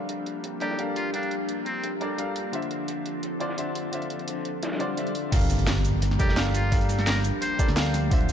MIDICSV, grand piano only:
0, 0, Header, 1, 2, 480
1, 0, Start_track
1, 0, Key_signature, -2, "minor"
1, 0, Tempo, 348837
1, 1566, Time_signature, 4, 2, 24, 8
1, 11454, End_track
2, 0, Start_track
2, 0, Title_t, "Grand piano"
2, 0, Program_c, 0, 0
2, 0, Control_c, 0, 64, 127
2, 0, Note_on_c, 0, 55, 68
2, 0, Note_on_c, 0, 62, 62
2, 0, Note_on_c, 0, 69, 64
2, 0, Note_on_c, 0, 70, 60
2, 0, Note_on_c, 0, 77, 77
2, 807, Note_off_c, 0, 55, 0
2, 812, Note_off_c, 0, 62, 0
2, 817, Note_off_c, 0, 69, 0
2, 822, Note_off_c, 0, 70, 0
2, 827, Note_off_c, 0, 77, 0
2, 834, Note_on_c, 0, 55, 85
2, 839, Note_on_c, 0, 62, 72
2, 843, Note_on_c, 0, 69, 75
2, 849, Note_on_c, 0, 70, 76
2, 853, Note_on_c, 0, 74, 88
2, 1053, Note_off_c, 0, 55, 0
2, 1055, Note_off_c, 0, 62, 0
2, 1057, Note_off_c, 0, 69, 0
2, 1060, Note_off_c, 0, 70, 0
2, 1062, Note_off_c, 0, 74, 0
2, 1075, Note_on_c, 0, 55, 73
2, 1081, Note_on_c, 0, 62, 70
2, 1086, Note_on_c, 0, 69, 66
2, 1090, Note_on_c, 0, 70, 69
2, 1096, Note_on_c, 0, 77, 81
2, 1526, Note_off_c, 0, 55, 0
2, 1536, Note_off_c, 0, 62, 0
2, 1538, Note_off_c, 0, 69, 0
2, 1541, Note_off_c, 0, 70, 0
2, 1543, Note_off_c, 0, 77, 0
2, 1546, Note_on_c, 0, 55, 68
2, 1557, Note_on_c, 0, 62, 62
2, 1566, Note_on_c, 0, 69, 63
2, 1576, Note_on_c, 0, 70, 63
2, 1587, Note_on_c, 0, 77, 76
2, 2729, Note_off_c, 0, 55, 0
2, 2734, Note_off_c, 0, 62, 0
2, 2739, Note_off_c, 0, 69, 0
2, 2744, Note_off_c, 0, 70, 0
2, 2749, Note_off_c, 0, 77, 0
2, 2757, Note_on_c, 0, 55, 78
2, 2761, Note_on_c, 0, 62, 74
2, 2766, Note_on_c, 0, 69, 72
2, 2771, Note_on_c, 0, 70, 79
2, 2776, Note_on_c, 0, 74, 89
2, 2974, Note_off_c, 0, 55, 0
2, 2976, Note_off_c, 0, 62, 0
2, 2978, Note_off_c, 0, 69, 0
2, 2981, Note_off_c, 0, 70, 0
2, 2984, Note_off_c, 0, 74, 0
2, 2995, Note_on_c, 0, 55, 73
2, 3001, Note_on_c, 0, 62, 69
2, 3006, Note_on_c, 0, 69, 66
2, 3010, Note_on_c, 0, 70, 65
2, 3015, Note_on_c, 0, 77, 82
2, 3453, Note_off_c, 0, 55, 0
2, 3454, Note_off_c, 0, 62, 0
2, 3458, Note_off_c, 0, 69, 0
2, 3461, Note_off_c, 0, 70, 0
2, 3463, Note_off_c, 0, 77, 0
2, 3465, Note_on_c, 0, 50, 70
2, 3475, Note_on_c, 0, 62, 66
2, 3485, Note_on_c, 0, 65, 66
2, 3495, Note_on_c, 0, 72, 61
2, 3503, Control_c, 0, 64, 0
2, 3505, Note_on_c, 0, 76, 77
2, 3733, Control_c, 0, 64, 127
2, 4648, Note_off_c, 0, 50, 0
2, 4653, Note_off_c, 0, 62, 0
2, 4658, Note_off_c, 0, 65, 0
2, 4663, Note_off_c, 0, 72, 0
2, 4668, Note_off_c, 0, 76, 0
2, 4675, Note_on_c, 0, 50, 84
2, 4680, Note_on_c, 0, 62, 76
2, 4685, Note_on_c, 0, 65, 75
2, 4690, Note_on_c, 0, 72, 75
2, 4694, Note_on_c, 0, 74, 88
2, 4893, Note_off_c, 0, 50, 0
2, 4895, Note_off_c, 0, 62, 0
2, 4898, Note_off_c, 0, 65, 0
2, 4900, Note_off_c, 0, 72, 0
2, 4902, Note_off_c, 0, 74, 0
2, 4916, Note_on_c, 0, 50, 71
2, 4921, Note_on_c, 0, 62, 69
2, 4926, Note_on_c, 0, 65, 66
2, 4931, Note_on_c, 0, 72, 65
2, 4936, Note_on_c, 0, 76, 83
2, 5362, Note_off_c, 0, 50, 0
2, 5373, Note_off_c, 0, 62, 0
2, 5379, Note_off_c, 0, 65, 0
2, 5381, Note_off_c, 0, 72, 0
2, 5383, Note_off_c, 0, 76, 0
2, 5383, Note_on_c, 0, 50, 68
2, 5393, Note_on_c, 0, 62, 64
2, 5402, Note_on_c, 0, 65, 62
2, 5413, Note_on_c, 0, 72, 65
2, 5423, Note_on_c, 0, 76, 76
2, 6567, Note_off_c, 0, 50, 0
2, 6572, Note_off_c, 0, 62, 0
2, 6577, Note_off_c, 0, 65, 0
2, 6582, Note_off_c, 0, 72, 0
2, 6587, Note_off_c, 0, 76, 0
2, 6594, Note_on_c, 0, 50, 86
2, 6598, Note_on_c, 0, 62, 77
2, 6603, Note_on_c, 0, 65, 80
2, 6609, Note_on_c, 0, 72, 80
2, 6613, Note_on_c, 0, 74, 90
2, 6813, Note_off_c, 0, 50, 0
2, 6815, Note_off_c, 0, 62, 0
2, 6817, Note_off_c, 0, 65, 0
2, 6820, Note_off_c, 0, 72, 0
2, 6822, Note_off_c, 0, 74, 0
2, 6837, Note_on_c, 0, 50, 75
2, 6841, Note_on_c, 0, 62, 72
2, 6846, Note_on_c, 0, 65, 70
2, 6850, Note_on_c, 0, 72, 65
2, 6856, Note_on_c, 0, 76, 78
2, 7294, Note_off_c, 0, 50, 0
2, 7294, Note_off_c, 0, 62, 0
2, 7298, Note_off_c, 0, 65, 0
2, 7301, Note_off_c, 0, 72, 0
2, 7304, Note_off_c, 0, 76, 0
2, 7305, Note_on_c, 0, 55, 73
2, 7315, Note_on_c, 0, 62, 71
2, 7325, Note_on_c, 0, 69, 68
2, 7336, Note_on_c, 0, 70, 70
2, 7341, Control_c, 0, 64, 0
2, 7345, Note_on_c, 0, 77, 82
2, 7615, Control_c, 0, 64, 127
2, 8488, Note_off_c, 0, 55, 0
2, 8493, Note_off_c, 0, 62, 0
2, 8498, Note_off_c, 0, 69, 0
2, 8503, Note_off_c, 0, 70, 0
2, 8508, Note_off_c, 0, 77, 0
2, 8515, Note_on_c, 0, 55, 91
2, 8521, Note_on_c, 0, 62, 79
2, 8525, Note_on_c, 0, 69, 82
2, 8530, Note_on_c, 0, 70, 84
2, 8536, Note_on_c, 0, 74, 97
2, 8733, Note_off_c, 0, 55, 0
2, 8736, Note_off_c, 0, 62, 0
2, 8738, Note_off_c, 0, 69, 0
2, 8740, Note_off_c, 0, 70, 0
2, 8743, Note_off_c, 0, 74, 0
2, 8755, Note_on_c, 0, 55, 78
2, 8760, Note_on_c, 0, 62, 77
2, 8764, Note_on_c, 0, 69, 73
2, 8770, Note_on_c, 0, 70, 76
2, 8774, Note_on_c, 0, 77, 89
2, 9205, Note_off_c, 0, 55, 0
2, 9215, Note_off_c, 0, 62, 0
2, 9218, Note_off_c, 0, 69, 0
2, 9221, Note_off_c, 0, 70, 0
2, 9223, Note_off_c, 0, 77, 0
2, 9226, Note_on_c, 0, 55, 74
2, 9236, Note_on_c, 0, 62, 73
2, 9246, Note_on_c, 0, 69, 71
2, 9255, Note_on_c, 0, 70, 70
2, 9265, Note_on_c, 0, 77, 85
2, 10408, Note_off_c, 0, 55, 0
2, 10413, Note_off_c, 0, 62, 0
2, 10418, Note_off_c, 0, 69, 0
2, 10423, Note_off_c, 0, 70, 0
2, 10428, Note_off_c, 0, 77, 0
2, 10435, Note_on_c, 0, 55, 89
2, 10440, Note_on_c, 0, 62, 84
2, 10445, Note_on_c, 0, 69, 82
2, 10450, Note_on_c, 0, 70, 83
2, 10455, Note_on_c, 0, 74, 101
2, 10653, Note_off_c, 0, 55, 0
2, 10656, Note_off_c, 0, 62, 0
2, 10658, Note_off_c, 0, 69, 0
2, 10661, Note_off_c, 0, 70, 0
2, 10663, Note_off_c, 0, 74, 0
2, 10675, Note_on_c, 0, 55, 79
2, 10680, Note_on_c, 0, 62, 74
2, 10685, Note_on_c, 0, 69, 74
2, 10690, Note_on_c, 0, 70, 77
2, 10695, Note_on_c, 0, 77, 88
2, 11133, Note_off_c, 0, 55, 0
2, 11135, Note_off_c, 0, 62, 0
2, 11138, Note_off_c, 0, 69, 0
2, 11140, Note_off_c, 0, 70, 0
2, 11143, Note_off_c, 0, 77, 0
2, 11145, Note_on_c, 0, 50, 82
2, 11156, Note_on_c, 0, 62, 71
2, 11164, Note_on_c, 0, 65, 70
2, 11174, Note_on_c, 0, 72, 70
2, 11185, Control_c, 0, 64, 0
2, 11185, Note_on_c, 0, 76, 84
2, 11397, Control_c, 0, 64, 127
2, 11454, Note_off_c, 0, 50, 0
2, 11454, Note_off_c, 0, 62, 0
2, 11454, Note_off_c, 0, 65, 0
2, 11454, Note_off_c, 0, 72, 0
2, 11454, Note_off_c, 0, 76, 0
2, 11454, End_track
0, 0, End_of_file